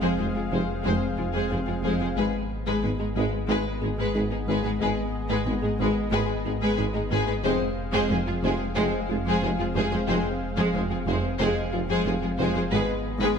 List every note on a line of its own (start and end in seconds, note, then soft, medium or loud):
0.00 2.18 F1 medium
0.00 0.09 F2 medium
0.00 0.13 F3 medium
0.00 2.13 G#3 medium
0.00 0.17 G#3 medium
0.00 2.13 C4 medium
0.00 2.13 G#4 medium
0.00 0.17 G#4 medium
0.00 0.17 C5 medium
0.00 2.13 F5 medium
0.18 0.25 F1 medium
0.18 0.26 F1 medium
0.18 0.25 F2 soft
0.18 0.25 G#3 soft
0.18 0.30 G#3 medium
0.18 0.25 G#4 soft
0.18 0.26 C5 medium
0.34 0.41 F2 medium
0.34 0.41 G#3 soft
0.34 0.41 F4 soft
0.34 0.46 F4 medium
0.34 0.42 G#4 soft
0.51 0.58 F1 medium
0.51 0.59 F1 medium
0.51 0.58 F2 medium
0.51 0.62 F3 medium
0.51 0.67 G#3 medium
0.51 0.67 G#4 medium
0.51 0.68 C5 medium
0.83 0.91 F1 medium
0.83 0.92 F1 medium
0.83 0.91 F2 medium
0.83 0.95 F3 medium
0.83 1.00 G#3 medium
0.83 1.08 G#3 medium
0.83 1.08 C4 medium
0.83 0.99 G#4 medium
0.83 1.01 C5 medium
1.17 1.24 F1 soft
1.17 1.25 F1 medium
1.17 1.24 F2 medium
1.17 1.24 G#3 medium
1.17 1.24 F4 medium
1.17 1.28 F4 medium
1.17 1.25 G#4 medium
1.32 1.41 F2 medium
1.32 1.45 F3 medium
1.32 1.49 G#3 medium
1.32 1.48 G#4 medium
1.32 1.50 C5 medium
1.49 1.58 F1 medium
1.49 1.57 F2 medium
1.49 1.57 G#3 medium
1.49 1.62 C4 medium
1.49 1.56 G#4 medium
1.49 1.58 C5 medium
1.66 1.73 F2 medium
1.66 1.74 G#3 medium
1.66 1.73 F4 medium
1.66 1.78 F4 medium
1.66 1.74 G#4 medium
1.83 1.91 F1 medium
1.83 1.90 F2 medium
1.83 1.94 F3 loud
1.83 1.99 G#3 medium
1.83 1.98 G#4 medium
1.83 2.00 C5 medium
1.99 2.07 F2 medium
1.99 2.07 G#3 medium
1.99 2.11 F4 medium
1.99 2.06 G#4 medium
1.99 2.07 C5 medium
2.16 7.46 G#1 medium
2.16 2.24 G#1 medium
2.16 2.23 G#2 medium
2.16 2.39 G#3 medium
2.16 7.41 G#3 medium
2.16 2.27 G#3 loud
2.16 2.33 G#3 medium
2.16 2.40 B3 medium
2.16 7.44 B3 medium
2.16 2.32 G#4 medium
2.16 7.41 G#4 medium
2.16 2.32 B4 medium
2.16 7.44 D#5 medium
2.66 2.73 G#2 medium
2.66 2.76 G#3 loud
2.66 2.82 G#3 medium
2.66 2.82 G#4 medium
2.66 2.82 B4 medium
2.83 2.90 G#1 medium
2.83 2.89 G#2 soft
2.83 2.89 G#3 medium
2.83 2.93 B3 medium
2.83 2.90 G#4 medium
2.83 2.90 B4 soft
2.99 3.06 G#2 medium
2.99 3.05 G#3 medium
2.99 3.06 D#4 medium
2.99 3.09 G#4 medium
2.99 3.06 G#4 medium
3.15 3.23 G#1 medium
3.15 3.23 G#2 medium
3.15 3.26 G#3 medium
3.15 3.31 G#3 medium
3.15 3.31 G#4 medium
3.15 3.32 B4 medium
3.48 3.55 G#1 medium
3.48 3.56 G#1 medium
3.48 3.56 G#2 medium
3.48 3.64 G#3 medium
3.48 3.58 G#3 loud
3.48 3.72 G#3 medium
3.48 3.72 B3 medium
3.48 3.64 G#4 medium
3.48 3.65 B4 medium
3.81 3.88 G#1 medium
3.81 3.89 G#1 medium
3.81 3.88 G#2 medium
3.81 3.88 G#3 medium
3.81 3.89 D#4 medium
3.81 3.92 G#4 medium
3.81 3.89 G#4 medium
3.98 4.05 G#2 medium
3.98 4.13 G#3 medium
3.98 4.08 G#3 medium
3.98 4.14 G#4 medium
3.98 4.14 B4 medium
4.15 4.22 G#1 medium
4.15 4.21 G#2 medium
4.15 4.21 G#3 medium
4.15 4.25 D#4 medium
4.15 4.22 G#4 medium
4.15 4.22 B4 medium
4.31 4.38 G#2 medium
4.31 4.38 G#3 medium
4.31 4.38 D#4 medium
4.31 4.38 G#4 medium
4.31 4.42 G#4 medium
4.46 4.55 G#1 medium
4.46 4.53 G#2 medium
4.46 4.58 G#3 loud
4.46 4.63 G#3 medium
4.46 4.64 G#4 medium
4.46 4.62 B4 medium
4.63 4.71 G#2 medium
4.63 4.71 G#3 medium
4.63 4.74 G#4 medium
4.63 4.71 G#4 medium
4.63 4.70 B4 medium
4.80 4.87 G#1 medium
4.80 4.87 G#2 medium
4.80 5.04 G#3 medium
4.80 4.91 G#3 loud
4.80 4.96 G#3 medium
4.80 5.03 B3 medium
4.80 4.96 G#4 medium
4.80 4.96 B4 medium
5.30 5.36 G#2 medium
5.30 5.40 G#3 medium
5.30 5.46 G#3 medium
5.30 5.44 G#4 medium
5.30 5.45 B4 medium
5.45 5.53 G#1 medium
5.45 5.54 G#1 medium
5.45 5.53 G#2 medium
5.45 5.54 G#3 medium
5.45 5.57 B3 medium
5.45 5.52 G#4 medium
5.45 5.53 B4 medium
5.62 5.69 G#2 medium
5.62 5.69 G#3 medium
5.62 5.70 D#4 medium
5.62 5.73 G#4 medium
5.62 5.70 G#4 medium
5.79 5.86 G#1 loud
5.79 5.87 G#1 medium
5.79 5.86 G#2 medium
5.79 5.95 G#3 loud
5.79 5.89 G#3 medium
5.79 5.95 G#4 medium
5.79 5.95 B4 medium
6.11 6.19 G#1 medium
6.11 6.18 G#2 loud
6.11 6.27 G#3 medium
6.11 6.22 G#3 loud
6.11 6.36 G#3 medium
6.11 6.35 B3 medium
6.11 6.28 G#4 medium
6.11 6.28 B4 loud
6.45 6.52 G#1 medium
6.45 6.52 G#2 medium
6.45 6.52 G#3 medium
6.45 6.52 D#4 medium
6.45 6.55 G#4 medium
6.45 6.52 G#4 medium
6.61 6.68 G#2 loud
6.61 6.72 G#3 loud
6.61 6.77 G#3 loud
6.61 6.76 G#4 loud
6.61 6.77 B4 medium
6.77 6.85 G#1 medium
6.77 6.84 G#2 medium
6.77 6.85 G#3 medium
6.77 6.88 D#4 medium
6.77 6.84 G#4 medium
6.77 6.85 B4 medium
6.94 7.01 G#2 medium
6.94 7.02 G#3 medium
6.94 7.01 D#4 medium
6.94 7.04 G#4 medium
6.94 7.01 G#4 medium
7.10 7.18 G#1 medium
7.10 7.17 G#2 medium
7.10 7.21 G#3 loud
7.10 7.27 G#3 medium
7.10 7.26 G#4 loud
7.10 7.25 B4 medium
7.26 7.34 G#2 medium
7.26 7.35 G#3 medium
7.26 7.34 G#4 medium
7.26 7.38 G#4 medium
7.26 7.33 B4 medium
7.43 12.74 F1 medium
7.43 7.51 F1 medium
7.43 7.50 F2 medium
7.43 7.54 F3 medium
7.43 7.60 G#3 loud
7.43 12.68 G#3 medium
7.43 7.67 G#3 medium
7.43 12.72 C4 medium
7.43 7.68 C4 medium
7.43 7.59 G#4 medium
7.43 12.68 G#4 medium
7.43 7.59 C5 medium
7.43 12.72 F5 medium
7.93 8.00 F2 loud
7.93 8.03 F3 loud
7.93 8.09 G#3 loud
7.93 8.09 G#4 medium
7.93 8.08 C5 loud
8.09 8.17 F1 medium
8.09 8.17 F2 medium
8.09 8.20 G#3 medium
8.09 8.17 G#3 medium
8.09 8.17 G#4 medium
8.09 8.16 C5 medium
8.26 8.33 F2 medium
8.26 8.33 G#3 medium
8.26 8.36 F4 medium
8.26 8.34 F4 medium
8.26 8.33 G#4 medium
8.43 8.50 F1 loud
8.43 8.50 F2 loud
8.43 8.53 F3 medium
8.43 8.59 G#3 loud
8.43 8.59 G#4 medium
8.43 8.58 C5 medium
8.75 8.83 F1 loud
8.75 8.82 F2 medium
8.75 8.86 F3 loud
8.75 8.99 G#3 medium
8.75 8.92 G#3 loud
8.75 8.99 C4 loud
8.75 8.91 G#4 medium
8.75 8.91 C5 loud
9.09 9.16 F1 medium
9.09 9.15 F2 medium
9.09 9.16 G#3 medium
9.09 9.19 F4 medium
9.09 9.16 F4 medium
9.09 9.16 G#4 medium
9.25 9.32 F2 loud
9.25 9.35 F3 medium
9.25 9.41 G#3 loud
9.25 9.42 G#4 loud
9.25 9.41 C5 medium
9.41 9.49 F1 medium
9.41 9.48 F2 medium
9.41 9.49 G#3 medium
9.41 9.52 C4 medium
9.41 9.50 G#4 medium
9.41 9.49 C5 medium
9.58 9.65 F2 medium
9.58 9.66 G#3 medium
9.58 9.69 F4 medium
9.58 9.66 F4 medium
9.58 9.65 G#4 medium
9.74 9.82 F1 loud
9.74 9.81 F2 loud
9.74 9.85 F3 loud
9.74 9.91 G#3 medium
9.74 9.89 G#4 loud
9.74 9.91 C5 medium
9.91 9.98 F2 medium
9.91 9.99 G#3 medium
9.91 10.01 F4 medium
9.91 9.97 G#4 medium
9.91 9.99 C5 medium
10.06 10.15 F1 loud
10.06 10.15 F1 medium
10.06 10.15 F2 medium
10.06 10.18 F3 loud
10.06 10.30 G#3 medium
10.06 10.24 G#3 loud
10.06 10.30 C4 medium
10.06 10.23 G#4 medium
10.06 10.23 C5 medium
10.57 10.64 F2 loud
10.57 10.67 F3 loud
10.57 10.74 G#3 loud
10.57 10.73 G#4 medium
10.57 10.73 C5 medium
10.74 10.81 F1 medium
10.74 10.80 F2 medium
10.74 10.84 G#3 medium
10.74 10.81 G#3 medium
10.74 10.81 G#4 medium
10.74 10.81 C5 medium
10.90 10.97 F2 medium
10.90 10.98 G#3 medium
10.90 11.00 F4 medium
10.90 10.97 F4 medium
10.90 10.97 G#4 medium
11.06 11.14 F1 loud
11.06 11.13 F2 loud
11.06 11.17 F3 medium
11.06 11.23 G#3 medium
11.06 11.22 G#4 medium
11.06 11.22 C5 medium
11.39 11.47 F1 loud
11.39 11.46 F2 loud
11.39 11.50 F3 loud
11.39 11.63 G#3 medium
11.39 11.56 G#3 loud
11.39 11.63 C4 medium
11.39 11.55 G#4 loud
11.39 11.55 C5 loud
11.71 11.80 F1 medium
11.71 11.81 F1 medium
11.71 11.79 F2 medium
11.71 11.80 G#3 medium
11.71 11.78 F4 medium
11.71 11.83 F4 medium
11.71 11.79 G#4 medium
11.89 11.95 F2 loud
11.89 11.99 F3 loud
11.89 12.05 G#3 loud
11.89 12.05 G#4 loud
11.89 12.05 C5 medium
12.05 12.13 F1 medium
12.05 12.12 F2 medium
12.05 12.13 G#3 medium
12.05 12.16 C4 medium
12.05 12.14 G#4 medium
12.05 12.12 C5 medium
12.21 12.28 F2 medium
12.21 12.30 G#3 medium
12.21 12.32 F4 medium
12.21 12.29 F4 medium
12.21 12.28 G#4 medium
12.37 12.45 F1 medium
12.37 12.46 F1 loud
12.37 12.44 F2 loud
12.37 12.49 F3 loud
12.37 12.55 G#3 loud
12.37 12.54 G#4 loud
12.37 12.53 C5 loud
12.54 12.61 F2 medium
12.54 12.63 G#3 medium
12.54 12.66 F4 medium
12.54 12.63 G#4 medium
12.54 12.62 C5 medium
12.70 12.78 G#1 medium
12.70 13.39 G#1 medium
12.70 12.79 G#1 loud
12.70 12.78 G#2 loud
12.70 12.94 G#3 medium
12.70 12.82 G#3 medium
12.70 13.39 G#3 medium
12.70 12.88 G#3 loud
12.70 12.94 B3 medium
12.70 13.39 B3 medium
12.70 13.39 G#4 medium
12.70 12.88 G#4 medium
12.70 12.86 B4 loud
12.70 13.39 D#5 medium
13.20 13.27 G#2 loud
13.20 13.31 G#3 loud
13.20 13.37 G#3 loud
13.20 13.37 G#4 medium
13.20 13.36 B4 medium